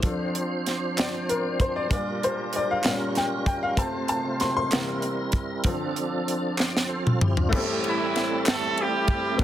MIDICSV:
0, 0, Header, 1, 5, 480
1, 0, Start_track
1, 0, Tempo, 623053
1, 28, Time_signature, 6, 3, 24, 8
1, 7272, End_track
2, 0, Start_track
2, 0, Title_t, "Tonewheel organ"
2, 0, Program_c, 0, 16
2, 36, Note_on_c, 0, 62, 59
2, 42, Note_on_c, 0, 53, 69
2, 45, Note_on_c, 0, 72, 72
2, 48, Note_on_c, 0, 60, 65
2, 1444, Note_off_c, 0, 62, 0
2, 1448, Note_off_c, 0, 53, 0
2, 1449, Note_off_c, 0, 72, 0
2, 1450, Note_off_c, 0, 60, 0
2, 1457, Note_on_c, 0, 62, 53
2, 1458, Note_on_c, 0, 65, 55
2, 1461, Note_on_c, 0, 55, 64
2, 1462, Note_on_c, 0, 70, 70
2, 2174, Note_off_c, 0, 55, 0
2, 2178, Note_off_c, 0, 70, 0
2, 2180, Note_off_c, 0, 65, 0
2, 2184, Note_off_c, 0, 62, 0
2, 2184, Note_on_c, 0, 55, 66
2, 2187, Note_on_c, 0, 70, 74
2, 2189, Note_on_c, 0, 65, 61
2, 2190, Note_on_c, 0, 61, 60
2, 2884, Note_off_c, 0, 65, 0
2, 2894, Note_on_c, 0, 65, 57
2, 2895, Note_on_c, 0, 60, 61
2, 2898, Note_on_c, 0, 48, 59
2, 2899, Note_on_c, 0, 57, 50
2, 2902, Note_on_c, 0, 72, 61
2, 2907, Note_off_c, 0, 55, 0
2, 2909, Note_off_c, 0, 70, 0
2, 2910, Note_off_c, 0, 61, 0
2, 3622, Note_off_c, 0, 65, 0
2, 3623, Note_off_c, 0, 60, 0
2, 3625, Note_off_c, 0, 48, 0
2, 3625, Note_off_c, 0, 57, 0
2, 3626, Note_off_c, 0, 72, 0
2, 3641, Note_on_c, 0, 64, 59
2, 3642, Note_on_c, 0, 60, 53
2, 3648, Note_on_c, 0, 69, 53
2, 3649, Note_on_c, 0, 55, 61
2, 3689, Note_off_c, 0, 69, 0
2, 3689, Note_on_c, 0, 70, 75
2, 4347, Note_off_c, 0, 60, 0
2, 4352, Note_on_c, 0, 69, 82
2, 4356, Note_off_c, 0, 64, 0
2, 4356, Note_on_c, 0, 60, 66
2, 4358, Note_on_c, 0, 62, 66
2, 4360, Note_off_c, 0, 55, 0
2, 4363, Note_on_c, 0, 53, 65
2, 4380, Note_off_c, 0, 70, 0
2, 5057, Note_off_c, 0, 69, 0
2, 5060, Note_off_c, 0, 62, 0
2, 5063, Note_on_c, 0, 77, 62
2, 5072, Note_on_c, 0, 74, 49
2, 5159, Note_off_c, 0, 74, 0
2, 5168, Note_on_c, 0, 74, 59
2, 5180, Note_off_c, 0, 77, 0
2, 5293, Note_off_c, 0, 74, 0
2, 5301, Note_on_c, 0, 72, 64
2, 5309, Note_on_c, 0, 69, 55
2, 5420, Note_off_c, 0, 72, 0
2, 5421, Note_off_c, 0, 69, 0
2, 5430, Note_on_c, 0, 69, 67
2, 5432, Note_on_c, 0, 65, 62
2, 5544, Note_off_c, 0, 69, 0
2, 5545, Note_off_c, 0, 65, 0
2, 5555, Note_on_c, 0, 64, 52
2, 5555, Note_on_c, 0, 67, 67
2, 5667, Note_off_c, 0, 64, 0
2, 5667, Note_off_c, 0, 67, 0
2, 5675, Note_on_c, 0, 65, 56
2, 5682, Note_on_c, 0, 62, 43
2, 5764, Note_off_c, 0, 60, 0
2, 5768, Note_off_c, 0, 53, 0
2, 5794, Note_on_c, 0, 55, 72
2, 5794, Note_on_c, 0, 64, 72
2, 5800, Note_on_c, 0, 57, 72
2, 5801, Note_on_c, 0, 69, 82
2, 5809, Note_on_c, 0, 58, 59
2, 5848, Note_on_c, 0, 60, 70
2, 5850, Note_off_c, 0, 58, 0
2, 5901, Note_off_c, 0, 65, 0
2, 5904, Note_off_c, 0, 62, 0
2, 7203, Note_off_c, 0, 55, 0
2, 7203, Note_off_c, 0, 64, 0
2, 7206, Note_off_c, 0, 57, 0
2, 7207, Note_off_c, 0, 69, 0
2, 7219, Note_off_c, 0, 60, 0
2, 7228, Note_on_c, 0, 60, 58
2, 7232, Note_on_c, 0, 69, 78
2, 7234, Note_on_c, 0, 62, 65
2, 7235, Note_on_c, 0, 57, 57
2, 7236, Note_on_c, 0, 54, 70
2, 7272, Note_off_c, 0, 54, 0
2, 7272, Note_off_c, 0, 57, 0
2, 7272, Note_off_c, 0, 60, 0
2, 7272, Note_off_c, 0, 62, 0
2, 7272, Note_off_c, 0, 69, 0
2, 7272, End_track
3, 0, Start_track
3, 0, Title_t, "Upright piano"
3, 0, Program_c, 1, 0
3, 0, Control_c, 1, 64, 127
3, 23, Note_on_c, 1, 53, 46
3, 28, Note_on_c, 1, 69, 44
3, 36, Note_on_c, 1, 62, 49
3, 38, Control_c, 1, 64, 0
3, 171, Control_c, 1, 64, 127
3, 760, Note_on_c, 1, 74, 59
3, 995, Note_on_c, 1, 70, 65
3, 1001, Note_off_c, 1, 74, 0
3, 1216, Note_off_c, 1, 70, 0
3, 1239, Note_on_c, 1, 72, 79
3, 1356, Note_on_c, 1, 74, 76
3, 1358, Note_off_c, 1, 72, 0
3, 1436, Note_off_c, 1, 53, 0
3, 1438, Note_off_c, 1, 69, 0
3, 1442, Note_off_c, 1, 62, 0
3, 1464, Note_on_c, 1, 46, 47
3, 1464, Note_on_c, 1, 55, 43
3, 1466, Note_on_c, 1, 62, 52
3, 1472, Note_off_c, 1, 74, 0
3, 1478, Control_c, 1, 64, 0
3, 1483, Note_on_c, 1, 74, 84
3, 1629, Control_c, 1, 64, 127
3, 1723, Note_off_c, 1, 74, 0
3, 1726, Note_on_c, 1, 72, 79
3, 1786, Note_off_c, 1, 46, 0
3, 1786, Note_off_c, 1, 55, 0
3, 1787, Note_off_c, 1, 62, 0
3, 1965, Note_off_c, 1, 72, 0
3, 1972, Note_on_c, 1, 74, 75
3, 2073, Note_off_c, 1, 74, 0
3, 2087, Note_on_c, 1, 77, 78
3, 2192, Note_on_c, 1, 46, 44
3, 2194, Note_off_c, 1, 77, 0
3, 2194, Note_on_c, 1, 55, 37
3, 2200, Control_c, 1, 64, 0
3, 2206, Note_on_c, 1, 61, 53
3, 2206, Note_on_c, 1, 77, 81
3, 2258, Note_off_c, 1, 77, 0
3, 2352, Control_c, 1, 64, 127
3, 2444, Note_on_c, 1, 79, 72
3, 2661, Note_off_c, 1, 79, 0
3, 2674, Note_on_c, 1, 79, 88
3, 2794, Note_on_c, 1, 77, 86
3, 2795, Note_off_c, 1, 79, 0
3, 2881, Note_off_c, 1, 46, 0
3, 2881, Note_off_c, 1, 55, 0
3, 2887, Note_off_c, 1, 61, 0
3, 2907, Note_on_c, 1, 48, 49
3, 2912, Note_on_c, 1, 60, 51
3, 2913, Note_on_c, 1, 57, 48
3, 2916, Note_off_c, 1, 77, 0
3, 2916, Note_on_c, 1, 81, 93
3, 2919, Control_c, 1, 64, 0
3, 3074, Control_c, 1, 64, 127
3, 3137, Note_off_c, 1, 81, 0
3, 3152, Note_on_c, 1, 81, 90
3, 3228, Note_off_c, 1, 48, 0
3, 3230, Note_off_c, 1, 60, 0
3, 3231, Note_off_c, 1, 57, 0
3, 3374, Note_off_c, 1, 81, 0
3, 3396, Note_on_c, 1, 84, 95
3, 3506, Note_off_c, 1, 84, 0
3, 3517, Note_on_c, 1, 84, 107
3, 3635, Note_on_c, 1, 48, 47
3, 3638, Note_on_c, 1, 58, 46
3, 3639, Note_on_c, 1, 52, 39
3, 3642, Control_c, 1, 64, 0
3, 3797, Control_c, 1, 64, 127
3, 3952, Note_off_c, 1, 48, 0
3, 3953, Note_off_c, 1, 58, 0
3, 3954, Note_off_c, 1, 52, 0
3, 4351, Note_on_c, 1, 50, 52
3, 4359, Note_on_c, 1, 53, 48
3, 4360, Control_c, 1, 64, 0
3, 4360, Note_on_c, 1, 60, 51
3, 4505, Control_c, 1, 64, 127
3, 4683, Note_off_c, 1, 84, 0
3, 5760, Note_off_c, 1, 50, 0
3, 5764, Note_off_c, 1, 53, 0
3, 5764, Note_off_c, 1, 60, 0
3, 5769, Note_on_c, 1, 57, 78
3, 5783, Note_on_c, 1, 59, 56
3, 5794, Note_on_c, 1, 64, 70
3, 5796, Note_on_c, 1, 33, 65
3, 5796, Note_on_c, 1, 45, 71
3, 5801, Control_c, 1, 64, 0
3, 5807, Note_on_c, 1, 67, 64
3, 5822, Note_on_c, 1, 69, 79
3, 5829, Note_on_c, 1, 60, 68
3, 5836, Note_off_c, 1, 59, 0
3, 5953, Control_c, 1, 64, 127
3, 7190, Note_off_c, 1, 57, 0
3, 7202, Note_off_c, 1, 33, 0
3, 7202, Note_off_c, 1, 45, 0
3, 7203, Note_off_c, 1, 64, 0
3, 7208, Note_on_c, 1, 57, 66
3, 7210, Note_off_c, 1, 60, 0
3, 7210, Note_off_c, 1, 67, 0
3, 7217, Note_off_c, 1, 69, 0
3, 7221, Note_on_c, 1, 60, 56
3, 7233, Note_on_c, 1, 62, 57
3, 7235, Note_on_c, 1, 50, 64
3, 7236, Note_on_c, 1, 38, 64
3, 7240, Control_c, 1, 64, 0
3, 7272, Note_off_c, 1, 38, 0
3, 7272, Note_off_c, 1, 50, 0
3, 7272, Note_off_c, 1, 57, 0
3, 7272, Note_off_c, 1, 60, 0
3, 7272, Note_off_c, 1, 62, 0
3, 7272, End_track
4, 0, Start_track
4, 0, Title_t, "Horn section"
4, 0, Program_c, 2, 61
4, 6063, Note_on_c, 2, 60, 73
4, 6064, Note_on_c, 2, 52, 83
4, 6064, Note_on_c, 2, 55, 71
4, 6064, Note_on_c, 2, 64, 90
4, 6496, Note_off_c, 2, 52, 0
4, 6496, Note_off_c, 2, 64, 0
4, 6547, Note_on_c, 2, 57, 94
4, 6547, Note_on_c, 2, 69, 102
4, 6735, Note_off_c, 2, 60, 0
4, 6736, Note_off_c, 2, 55, 0
4, 6769, Note_off_c, 2, 57, 0
4, 6769, Note_off_c, 2, 69, 0
4, 6774, Note_on_c, 2, 64, 74
4, 6775, Note_on_c, 2, 60, 72
4, 6791, Note_on_c, 2, 55, 91
4, 6791, Note_on_c, 2, 67, 99
4, 7211, Note_off_c, 2, 64, 0
4, 7212, Note_off_c, 2, 60, 0
4, 7248, Note_on_c, 2, 60, 78
4, 7250, Note_off_c, 2, 55, 0
4, 7250, Note_off_c, 2, 67, 0
4, 7272, Note_off_c, 2, 60, 0
4, 7272, End_track
5, 0, Start_track
5, 0, Title_t, "Drums"
5, 20, Note_on_c, 9, 42, 81
5, 25, Note_on_c, 9, 36, 102
5, 97, Note_off_c, 9, 42, 0
5, 102, Note_off_c, 9, 36, 0
5, 269, Note_on_c, 9, 42, 52
5, 346, Note_off_c, 9, 42, 0
5, 512, Note_on_c, 9, 42, 50
5, 519, Note_on_c, 9, 38, 35
5, 589, Note_off_c, 9, 42, 0
5, 596, Note_off_c, 9, 38, 0
5, 753, Note_on_c, 9, 39, 94
5, 755, Note_on_c, 9, 42, 68
5, 766, Note_on_c, 9, 38, 96
5, 830, Note_off_c, 9, 39, 0
5, 832, Note_off_c, 9, 42, 0
5, 843, Note_off_c, 9, 38, 0
5, 997, Note_on_c, 9, 42, 48
5, 1074, Note_off_c, 9, 42, 0
5, 1230, Note_on_c, 9, 36, 78
5, 1231, Note_on_c, 9, 42, 51
5, 1307, Note_off_c, 9, 36, 0
5, 1308, Note_off_c, 9, 42, 0
5, 1469, Note_on_c, 9, 36, 107
5, 1472, Note_on_c, 9, 42, 89
5, 1546, Note_off_c, 9, 36, 0
5, 1549, Note_off_c, 9, 42, 0
5, 1721, Note_on_c, 9, 42, 47
5, 1798, Note_off_c, 9, 42, 0
5, 1947, Note_on_c, 9, 42, 57
5, 2024, Note_off_c, 9, 42, 0
5, 2184, Note_on_c, 9, 39, 91
5, 2190, Note_on_c, 9, 42, 68
5, 2201, Note_on_c, 9, 38, 93
5, 2261, Note_off_c, 9, 39, 0
5, 2267, Note_off_c, 9, 42, 0
5, 2278, Note_off_c, 9, 38, 0
5, 2429, Note_on_c, 9, 42, 41
5, 2441, Note_on_c, 9, 38, 30
5, 2506, Note_off_c, 9, 42, 0
5, 2518, Note_off_c, 9, 38, 0
5, 2668, Note_on_c, 9, 36, 83
5, 2669, Note_on_c, 9, 42, 48
5, 2745, Note_off_c, 9, 36, 0
5, 2746, Note_off_c, 9, 42, 0
5, 2906, Note_on_c, 9, 36, 108
5, 2907, Note_on_c, 9, 42, 82
5, 2983, Note_off_c, 9, 36, 0
5, 2984, Note_off_c, 9, 42, 0
5, 3146, Note_on_c, 9, 42, 51
5, 3223, Note_off_c, 9, 42, 0
5, 3389, Note_on_c, 9, 42, 49
5, 3396, Note_on_c, 9, 38, 37
5, 3466, Note_off_c, 9, 42, 0
5, 3473, Note_off_c, 9, 38, 0
5, 3631, Note_on_c, 9, 39, 91
5, 3635, Note_on_c, 9, 42, 67
5, 3646, Note_on_c, 9, 38, 99
5, 3708, Note_off_c, 9, 39, 0
5, 3712, Note_off_c, 9, 42, 0
5, 3723, Note_off_c, 9, 38, 0
5, 3869, Note_on_c, 9, 42, 42
5, 3946, Note_off_c, 9, 42, 0
5, 4098, Note_on_c, 9, 42, 54
5, 4107, Note_on_c, 9, 36, 89
5, 4175, Note_off_c, 9, 42, 0
5, 4184, Note_off_c, 9, 36, 0
5, 4343, Note_on_c, 9, 42, 95
5, 4349, Note_on_c, 9, 36, 109
5, 4420, Note_off_c, 9, 42, 0
5, 4426, Note_off_c, 9, 36, 0
5, 4594, Note_on_c, 9, 42, 50
5, 4671, Note_off_c, 9, 42, 0
5, 4839, Note_on_c, 9, 42, 54
5, 4916, Note_off_c, 9, 42, 0
5, 5069, Note_on_c, 9, 39, 93
5, 5085, Note_on_c, 9, 38, 48
5, 5146, Note_off_c, 9, 39, 0
5, 5162, Note_off_c, 9, 38, 0
5, 5212, Note_on_c, 9, 38, 51
5, 5289, Note_off_c, 9, 38, 0
5, 5445, Note_on_c, 9, 47, 71
5, 5522, Note_off_c, 9, 47, 0
5, 5558, Note_on_c, 9, 45, 101
5, 5635, Note_off_c, 9, 45, 0
5, 5679, Note_on_c, 9, 43, 77
5, 5756, Note_off_c, 9, 43, 0
5, 5799, Note_on_c, 9, 36, 127
5, 5801, Note_on_c, 9, 49, 108
5, 5876, Note_off_c, 9, 36, 0
5, 5878, Note_off_c, 9, 49, 0
5, 6039, Note_on_c, 9, 51, 46
5, 6116, Note_off_c, 9, 51, 0
5, 6284, Note_on_c, 9, 51, 51
5, 6291, Note_on_c, 9, 38, 41
5, 6361, Note_off_c, 9, 51, 0
5, 6369, Note_off_c, 9, 38, 0
5, 6514, Note_on_c, 9, 39, 105
5, 6523, Note_on_c, 9, 51, 66
5, 6533, Note_on_c, 9, 38, 117
5, 6591, Note_off_c, 9, 39, 0
5, 6600, Note_off_c, 9, 51, 0
5, 6610, Note_off_c, 9, 38, 0
5, 6760, Note_on_c, 9, 51, 44
5, 6838, Note_off_c, 9, 51, 0
5, 6993, Note_on_c, 9, 51, 48
5, 6996, Note_on_c, 9, 36, 92
5, 7070, Note_off_c, 9, 51, 0
5, 7073, Note_off_c, 9, 36, 0
5, 7235, Note_on_c, 9, 36, 127
5, 7236, Note_on_c, 9, 51, 77
5, 7272, Note_off_c, 9, 36, 0
5, 7272, Note_off_c, 9, 51, 0
5, 7272, End_track
0, 0, End_of_file